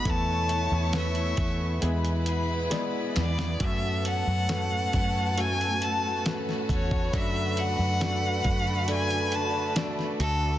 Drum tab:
HH |x-x-xxx-xxx-x-x-|x-x-x-x-xxx-x-x-|x-x-x-x-xxx-x-x-|
SD |----o-------o-oo|----o-------oo--|----o-------oo--|
BD |o-----o---------|o-----o-------oo|o-----o---------|